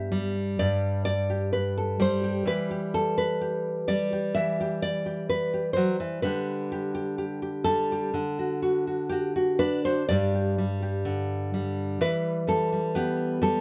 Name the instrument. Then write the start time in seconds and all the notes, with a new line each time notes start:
nylon-string guitar
Already playing: G2 G3 B3 G4 E5
0.12 G3
0.59 G2 D5
1.05 D5
1.30 G4
1.53 B4
1.78 A4
2.00 G3 C5
2.24 G4
2.45 E3 B4
2.71 G4
2.94 A4
3.18 B4
3.41 G4
3.88 G3 D5
4.13 G4
4.35 E3 E5
4.61 G4
4.82 D5
5.06 G4
5.29 B4
5.54 G4
5.73 F#3 C5
6.00 E3
6.22 D3 G3 G4 B4
6.72 G4
6.95 G4
7.18 G4
7.42 G4
7.64 G3 A4
7.92 G4
8.14 D3
8.39 F#4
8.62 F#4
8.87 F#4
9.09 F#4 G4
9.36 F#4
9.59 D4 B4
9.84 F#4 C5
10.09 G2 G3 G4 D5
10.35 G4
10.58 G3
10.82 G4
11.05 D3
11.54 G3
12.01 E3 B4
12.47 G3 A4
12.72 G3
12.95 B3 G4
13.42 G3 A4